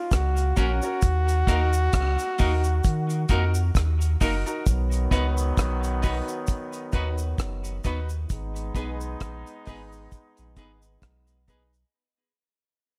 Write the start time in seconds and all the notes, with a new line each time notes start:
Already playing: F4
0.11 C#2 F#4, kick, cross-stick, closed hi-hat, cabasa
0.37 closed hi-hat, cabasa
0.56 A#1 A#3 C#4 F#4 A#4, kick, closed hi-hat, cabasa
0.82 C#4 F#4 A#4, cabasa
1.02 D#2, kick, closed hi-hat, cabasa
1.28 closed hi-hat, cabasa
1.47 D#2 A#3 D#4 F#4 A#4, kick, cross-stick, closed hi-hat, cabasa
1.73 closed hi-hat, cabasa
1.93 C#2, kick, cross-stick, closed hi-hat, cabasa
2.19 closed hi-hat, cabasa
2.38 D#2 A#3 D#4 F#4 A#4, kick, open hi-hat, cabasa
2.64 closed hi-hat, cabasa
2.84 D#3, kick, closed hi-hat, cabasa
3.10 closed hi-hat, cabasa
3.29 F2 A#3 D#4 F#4 A#4, kick, closed hi-hat, cabasa
3.55 cabasa
3.75 D#2, kick, cross-stick, closed hi-hat, cabasa
4.01 closed hi-hat, cabasa
4.21 F#1 A#3 D#4 F#4 A#4, kick, open hi-hat, cabasa
4.46 D#4 F#4 A#4, closed hi-hat, cabasa
4.66 B1 D#3 F#3 B3, kick, closed hi-hat, cabasa
4.92 closed hi-hat, cabasa
5.11 C#2 B3 D#4 F#4 B4, kick, cross-stick, closed hi-hat, cabasa
5.38 cabasa
5.57 B1, kick, cross-stick, closed hi-hat, cabasa
5.83 closed hi-hat, cabasa
6.02 B3 D#4 F#4 B4, kick, open hi-hat, cabasa
6.28 F#4 B4, closed hi-hat, cabasa
6.47 kick, closed hi-hat, cabasa
6.73 closed hi-hat, cabasa
6.92 D#2 B3 D#4 F#4 B4, kick, closed hi-hat, cabasa
7.18 cabasa
7.38 F#1, kick, cross-stick, closed hi-hat, cabasa
7.65 closed hi-hat, cabasa
7.84 D#2 B3 D#4 F#4 B4, kick, closed hi-hat, cabasa
8.09 cabasa
8.30 G#1 G#3 B3 D#4, kick, closed hi-hat, cabasa
8.56 closed hi-hat, cabasa
8.75 B1 B3 D#4 G#4 B4, kick, closed hi-hat, cabasa
9.01 cabasa
9.20 A#1, kick, cross-stick, closed hi-hat, cabasa
9.47 closed hi-hat, cabasa
9.65 G#1 B3 D#4 G#4 B4, kick, open hi-hat, cabasa
9.92 G#4 B4, cabasa
10.12 kick, closed hi-hat, cabasa
10.37 A#1, closed hi-hat, cabasa
10.56 G#1 B3 D#4 G#4 B4, kick, closed hi-hat, cabasa
10.82 cabasa
11.02 B1, kick, cross-stick, closed hi-hat, cabasa
11.27 closed hi-hat, cabasa
11.48 B3 D#4 G#4 B4, kick, closed hi-hat, cabasa
11.73 closed hi-hat, cabasa